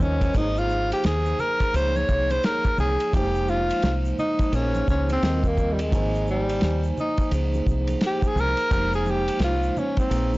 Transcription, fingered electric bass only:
0, 0, Header, 1, 2, 480
1, 0, Start_track
1, 0, Tempo, 697674
1, 237, Time_signature, 4, 2, 24, 8
1, 7139, End_track
2, 0, Start_track
2, 0, Title_t, "Fingered electric bass"
2, 0, Program_c, 0, 33
2, 0, Note_on_c, 0, 39, 106
2, 195, Note_off_c, 0, 39, 0
2, 237, Note_on_c, 0, 32, 120
2, 631, Note_off_c, 0, 32, 0
2, 718, Note_on_c, 0, 39, 95
2, 915, Note_off_c, 0, 39, 0
2, 1197, Note_on_c, 0, 37, 91
2, 1394, Note_off_c, 0, 37, 0
2, 1438, Note_on_c, 0, 36, 71
2, 1635, Note_off_c, 0, 36, 0
2, 1914, Note_on_c, 0, 36, 100
2, 2036, Note_off_c, 0, 36, 0
2, 2157, Note_on_c, 0, 29, 117
2, 2552, Note_off_c, 0, 29, 0
2, 2635, Note_on_c, 0, 36, 89
2, 2833, Note_off_c, 0, 36, 0
2, 3113, Note_on_c, 0, 34, 95
2, 3312, Note_off_c, 0, 34, 0
2, 3357, Note_on_c, 0, 37, 87
2, 3554, Note_off_c, 0, 37, 0
2, 3596, Note_on_c, 0, 39, 100
2, 4077, Note_on_c, 0, 32, 127
2, 4087, Note_off_c, 0, 39, 0
2, 4555, Note_on_c, 0, 39, 91
2, 4565, Note_off_c, 0, 32, 0
2, 4753, Note_off_c, 0, 39, 0
2, 5034, Note_on_c, 0, 37, 96
2, 5232, Note_off_c, 0, 37, 0
2, 5273, Note_on_c, 0, 36, 83
2, 5472, Note_off_c, 0, 36, 0
2, 5748, Note_on_c, 0, 36, 103
2, 5872, Note_off_c, 0, 36, 0
2, 5992, Note_on_c, 0, 29, 114
2, 6389, Note_off_c, 0, 29, 0
2, 6466, Note_on_c, 0, 36, 102
2, 6668, Note_off_c, 0, 36, 0
2, 6953, Note_on_c, 0, 34, 98
2, 7139, Note_off_c, 0, 34, 0
2, 7139, End_track
0, 0, End_of_file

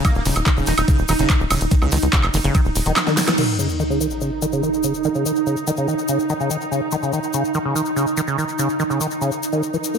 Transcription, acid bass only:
0, 0, Header, 1, 2, 480
1, 0, Start_track
1, 0, Tempo, 416667
1, 54, Time_signature, 4, 2, 24, 8
1, 11500, End_track
2, 0, Start_track
2, 0, Title_t, "Acid bass"
2, 0, Program_c, 0, 38
2, 54, Note_on_c, 0, 51, 88
2, 127, Note_off_c, 0, 51, 0
2, 294, Note_on_c, 0, 49, 81
2, 403, Note_off_c, 0, 49, 0
2, 534, Note_on_c, 0, 51, 101
2, 578, Note_off_c, 0, 51, 0
2, 654, Note_on_c, 0, 49, 79
2, 763, Note_off_c, 0, 49, 0
2, 774, Note_on_c, 0, 51, 81
2, 847, Note_off_c, 0, 51, 0
2, 1014, Note_on_c, 0, 49, 88
2, 1123, Note_off_c, 0, 49, 0
2, 1253, Note_on_c, 0, 51, 101
2, 1297, Note_off_c, 0, 51, 0
2, 1374, Note_on_c, 0, 49, 76
2, 1483, Note_off_c, 0, 49, 0
2, 1733, Note_on_c, 0, 49, 79
2, 1843, Note_off_c, 0, 49, 0
2, 1973, Note_on_c, 0, 51, 106
2, 2017, Note_off_c, 0, 51, 0
2, 2093, Note_on_c, 0, 49, 79
2, 2203, Note_off_c, 0, 49, 0
2, 2213, Note_on_c, 0, 51, 79
2, 2286, Note_off_c, 0, 51, 0
2, 2453, Note_on_c, 0, 49, 85
2, 2563, Note_off_c, 0, 49, 0
2, 2693, Note_on_c, 0, 51, 105
2, 2737, Note_off_c, 0, 51, 0
2, 2813, Note_on_c, 0, 49, 80
2, 2923, Note_off_c, 0, 49, 0
2, 2933, Note_on_c, 0, 51, 87
2, 3006, Note_off_c, 0, 51, 0
2, 3293, Note_on_c, 0, 51, 77
2, 3366, Note_off_c, 0, 51, 0
2, 3533, Note_on_c, 0, 51, 105
2, 3653, Note_on_c, 0, 52, 103
2, 3671, Note_off_c, 0, 51, 0
2, 3697, Note_off_c, 0, 52, 0
2, 3773, Note_on_c, 0, 52, 77
2, 3847, Note_off_c, 0, 52, 0
2, 3894, Note_on_c, 0, 51, 83
2, 3967, Note_off_c, 0, 51, 0
2, 4134, Note_on_c, 0, 49, 79
2, 4243, Note_off_c, 0, 49, 0
2, 4374, Note_on_c, 0, 51, 100
2, 4418, Note_off_c, 0, 51, 0
2, 4494, Note_on_c, 0, 49, 74
2, 4603, Note_off_c, 0, 49, 0
2, 4614, Note_on_c, 0, 51, 77
2, 4687, Note_off_c, 0, 51, 0
2, 4854, Note_on_c, 0, 49, 86
2, 4963, Note_off_c, 0, 49, 0
2, 5094, Note_on_c, 0, 51, 100
2, 5138, Note_off_c, 0, 51, 0
2, 5214, Note_on_c, 0, 49, 74
2, 5323, Note_off_c, 0, 49, 0
2, 5334, Note_on_c, 0, 51, 85
2, 5407, Note_off_c, 0, 51, 0
2, 5574, Note_on_c, 0, 49, 79
2, 5684, Note_off_c, 0, 49, 0
2, 5814, Note_on_c, 0, 51, 103
2, 5858, Note_off_c, 0, 51, 0
2, 5934, Note_on_c, 0, 49, 78
2, 6043, Note_off_c, 0, 49, 0
2, 6054, Note_on_c, 0, 51, 78
2, 6127, Note_off_c, 0, 51, 0
2, 6294, Note_on_c, 0, 49, 85
2, 6403, Note_off_c, 0, 49, 0
2, 6534, Note_on_c, 0, 51, 103
2, 6578, Note_off_c, 0, 51, 0
2, 6654, Note_on_c, 0, 49, 74
2, 6763, Note_off_c, 0, 49, 0
2, 6774, Note_on_c, 0, 51, 88
2, 6847, Note_off_c, 0, 51, 0
2, 7014, Note_on_c, 0, 49, 76
2, 7123, Note_off_c, 0, 49, 0
2, 7254, Note_on_c, 0, 51, 102
2, 7298, Note_off_c, 0, 51, 0
2, 7374, Note_on_c, 0, 49, 77
2, 7483, Note_off_c, 0, 49, 0
2, 7494, Note_on_c, 0, 51, 80
2, 7567, Note_off_c, 0, 51, 0
2, 7733, Note_on_c, 0, 49, 85
2, 7843, Note_off_c, 0, 49, 0
2, 7973, Note_on_c, 0, 51, 106
2, 8017, Note_off_c, 0, 51, 0
2, 8093, Note_on_c, 0, 49, 79
2, 8203, Note_off_c, 0, 49, 0
2, 8214, Note_on_c, 0, 51, 85
2, 8287, Note_off_c, 0, 51, 0
2, 8454, Note_on_c, 0, 49, 79
2, 8563, Note_off_c, 0, 49, 0
2, 8694, Note_on_c, 0, 51, 103
2, 8737, Note_off_c, 0, 51, 0
2, 8814, Note_on_c, 0, 49, 79
2, 8923, Note_off_c, 0, 49, 0
2, 8934, Note_on_c, 0, 51, 75
2, 9007, Note_off_c, 0, 51, 0
2, 9173, Note_on_c, 0, 49, 85
2, 9283, Note_off_c, 0, 49, 0
2, 9413, Note_on_c, 0, 51, 101
2, 9457, Note_off_c, 0, 51, 0
2, 9534, Note_on_c, 0, 49, 74
2, 9643, Note_off_c, 0, 49, 0
2, 9653, Note_on_c, 0, 51, 82
2, 9727, Note_off_c, 0, 51, 0
2, 9893, Note_on_c, 0, 49, 78
2, 10003, Note_off_c, 0, 49, 0
2, 10133, Note_on_c, 0, 51, 103
2, 10177, Note_off_c, 0, 51, 0
2, 10253, Note_on_c, 0, 49, 75
2, 10363, Note_off_c, 0, 49, 0
2, 10374, Note_on_c, 0, 51, 77
2, 10447, Note_off_c, 0, 51, 0
2, 10614, Note_on_c, 0, 49, 83
2, 10723, Note_off_c, 0, 49, 0
2, 10974, Note_on_c, 0, 51, 78
2, 11083, Note_off_c, 0, 51, 0
2, 11214, Note_on_c, 0, 52, 77
2, 11258, Note_off_c, 0, 52, 0
2, 11454, Note_on_c, 0, 58, 75
2, 11500, Note_off_c, 0, 58, 0
2, 11500, End_track
0, 0, End_of_file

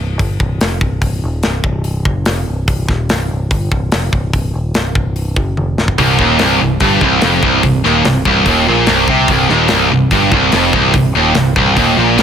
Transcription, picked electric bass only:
0, 0, Header, 1, 2, 480
1, 0, Start_track
1, 0, Key_signature, -3, "minor"
1, 0, Tempo, 413223
1, 1191, Time_signature, 4, 2, 24, 8
1, 14203, End_track
2, 0, Start_track
2, 0, Title_t, "Picked electric bass"
2, 0, Program_c, 0, 34
2, 0, Note_on_c, 0, 24, 73
2, 208, Note_off_c, 0, 24, 0
2, 222, Note_on_c, 0, 31, 81
2, 449, Note_off_c, 0, 31, 0
2, 470, Note_on_c, 0, 24, 87
2, 694, Note_off_c, 0, 24, 0
2, 708, Note_on_c, 0, 29, 89
2, 932, Note_off_c, 0, 29, 0
2, 940, Note_on_c, 0, 24, 87
2, 1168, Note_off_c, 0, 24, 0
2, 1176, Note_on_c, 0, 24, 71
2, 1406, Note_off_c, 0, 24, 0
2, 1438, Note_on_c, 0, 27, 88
2, 1658, Note_off_c, 0, 27, 0
2, 1682, Note_on_c, 0, 24, 74
2, 1896, Note_off_c, 0, 24, 0
2, 1903, Note_on_c, 0, 24, 101
2, 2354, Note_off_c, 0, 24, 0
2, 2382, Note_on_c, 0, 30, 81
2, 2610, Note_off_c, 0, 30, 0
2, 2632, Note_on_c, 0, 29, 90
2, 2856, Note_off_c, 0, 29, 0
2, 2878, Note_on_c, 0, 24, 73
2, 3099, Note_off_c, 0, 24, 0
2, 3108, Note_on_c, 0, 24, 89
2, 3334, Note_off_c, 0, 24, 0
2, 3350, Note_on_c, 0, 27, 90
2, 3575, Note_off_c, 0, 27, 0
2, 3608, Note_on_c, 0, 24, 86
2, 3825, Note_off_c, 0, 24, 0
2, 3847, Note_on_c, 0, 24, 75
2, 4065, Note_off_c, 0, 24, 0
2, 4076, Note_on_c, 0, 31, 80
2, 4299, Note_off_c, 0, 31, 0
2, 4314, Note_on_c, 0, 24, 86
2, 4538, Note_off_c, 0, 24, 0
2, 4570, Note_on_c, 0, 29, 87
2, 4783, Note_off_c, 0, 29, 0
2, 4790, Note_on_c, 0, 24, 77
2, 5016, Note_off_c, 0, 24, 0
2, 5032, Note_on_c, 0, 24, 74
2, 5257, Note_off_c, 0, 24, 0
2, 5271, Note_on_c, 0, 27, 82
2, 5497, Note_off_c, 0, 27, 0
2, 5522, Note_on_c, 0, 24, 69
2, 5743, Note_off_c, 0, 24, 0
2, 5749, Note_on_c, 0, 24, 89
2, 6199, Note_off_c, 0, 24, 0
2, 6231, Note_on_c, 0, 30, 85
2, 6457, Note_off_c, 0, 30, 0
2, 6474, Note_on_c, 0, 29, 85
2, 6698, Note_off_c, 0, 29, 0
2, 6707, Note_on_c, 0, 24, 68
2, 6935, Note_off_c, 0, 24, 0
2, 6953, Note_on_c, 0, 24, 86
2, 7178, Note_off_c, 0, 24, 0
2, 7188, Note_on_c, 0, 27, 90
2, 7416, Note_off_c, 0, 27, 0
2, 7441, Note_on_c, 0, 24, 87
2, 7662, Note_off_c, 0, 24, 0
2, 7690, Note_on_c, 0, 24, 73
2, 7898, Note_off_c, 0, 24, 0
2, 7905, Note_on_c, 0, 31, 86
2, 8134, Note_off_c, 0, 31, 0
2, 8142, Note_on_c, 0, 24, 83
2, 8372, Note_off_c, 0, 24, 0
2, 8394, Note_on_c, 0, 29, 93
2, 8619, Note_off_c, 0, 29, 0
2, 8624, Note_on_c, 0, 24, 90
2, 8854, Note_off_c, 0, 24, 0
2, 8869, Note_on_c, 0, 24, 77
2, 9096, Note_off_c, 0, 24, 0
2, 9105, Note_on_c, 0, 27, 86
2, 9334, Note_off_c, 0, 27, 0
2, 9341, Note_on_c, 0, 24, 74
2, 9572, Note_off_c, 0, 24, 0
2, 9588, Note_on_c, 0, 24, 94
2, 9815, Note_off_c, 0, 24, 0
2, 9828, Note_on_c, 0, 27, 86
2, 10056, Note_off_c, 0, 27, 0
2, 10084, Note_on_c, 0, 34, 88
2, 10304, Note_off_c, 0, 34, 0
2, 10321, Note_on_c, 0, 24, 95
2, 10538, Note_off_c, 0, 24, 0
2, 10545, Note_on_c, 0, 36, 84
2, 10774, Note_off_c, 0, 36, 0
2, 10783, Note_on_c, 0, 24, 89
2, 11013, Note_off_c, 0, 24, 0
2, 11036, Note_on_c, 0, 27, 87
2, 11260, Note_off_c, 0, 27, 0
2, 11278, Note_on_c, 0, 24, 88
2, 11500, Note_off_c, 0, 24, 0
2, 11515, Note_on_c, 0, 24, 80
2, 11738, Note_off_c, 0, 24, 0
2, 11748, Note_on_c, 0, 31, 92
2, 11972, Note_off_c, 0, 31, 0
2, 11979, Note_on_c, 0, 24, 99
2, 12209, Note_off_c, 0, 24, 0
2, 12228, Note_on_c, 0, 29, 95
2, 12454, Note_off_c, 0, 29, 0
2, 12467, Note_on_c, 0, 24, 87
2, 12693, Note_off_c, 0, 24, 0
2, 12702, Note_on_c, 0, 24, 73
2, 12931, Note_off_c, 0, 24, 0
2, 12947, Note_on_c, 0, 27, 86
2, 13173, Note_off_c, 0, 27, 0
2, 13189, Note_on_c, 0, 24, 79
2, 13414, Note_off_c, 0, 24, 0
2, 13430, Note_on_c, 0, 24, 84
2, 13654, Note_off_c, 0, 24, 0
2, 13668, Note_on_c, 0, 27, 90
2, 13893, Note_off_c, 0, 27, 0
2, 13905, Note_on_c, 0, 34, 86
2, 14131, Note_off_c, 0, 34, 0
2, 14147, Note_on_c, 0, 24, 91
2, 14203, Note_off_c, 0, 24, 0
2, 14203, End_track
0, 0, End_of_file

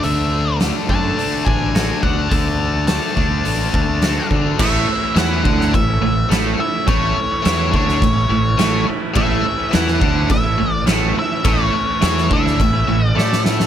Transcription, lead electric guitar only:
0, 0, Header, 1, 2, 480
1, 0, Start_track
1, 0, Key_signature, 3, "major"
1, 0, Tempo, 570342
1, 35, Time_signature, 4, 2, 24, 8
1, 11502, End_track
2, 0, Start_track
2, 0, Title_t, "Lead electric guitar"
2, 0, Program_c, 0, 29
2, 31, Note_on_c, 0, 76, 81
2, 479, Note_off_c, 0, 76, 0
2, 759, Note_on_c, 0, 81, 104
2, 1203, Note_off_c, 0, 81, 0
2, 1220, Note_on_c, 0, 80, 91
2, 1673, Note_off_c, 0, 80, 0
2, 1707, Note_on_c, 0, 78, 85
2, 1931, Note_on_c, 0, 81, 103
2, 1957, Note_off_c, 0, 78, 0
2, 2388, Note_off_c, 0, 81, 0
2, 2420, Note_on_c, 0, 81, 83
2, 3592, Note_off_c, 0, 81, 0
2, 3869, Note_on_c, 0, 76, 99
2, 4356, Note_off_c, 0, 76, 0
2, 4360, Note_on_c, 0, 78, 109
2, 4834, Note_off_c, 0, 78, 0
2, 4837, Note_on_c, 0, 76, 88
2, 5281, Note_off_c, 0, 76, 0
2, 5555, Note_on_c, 0, 76, 104
2, 5776, Note_off_c, 0, 76, 0
2, 5792, Note_on_c, 0, 73, 102
2, 6524, Note_off_c, 0, 73, 0
2, 6534, Note_on_c, 0, 73, 74
2, 7450, Note_off_c, 0, 73, 0
2, 7718, Note_on_c, 0, 76, 104
2, 8202, Note_on_c, 0, 78, 104
2, 8210, Note_off_c, 0, 76, 0
2, 8645, Note_off_c, 0, 78, 0
2, 8679, Note_on_c, 0, 76, 79
2, 9024, Note_off_c, 0, 76, 0
2, 9024, Note_on_c, 0, 74, 79
2, 9123, Note_off_c, 0, 74, 0
2, 9420, Note_on_c, 0, 76, 105
2, 9654, Note_off_c, 0, 76, 0
2, 9665, Note_on_c, 0, 73, 104
2, 10374, Note_off_c, 0, 73, 0
2, 10377, Note_on_c, 0, 76, 94
2, 11008, Note_off_c, 0, 76, 0
2, 11008, Note_on_c, 0, 74, 94
2, 11294, Note_off_c, 0, 74, 0
2, 11502, End_track
0, 0, End_of_file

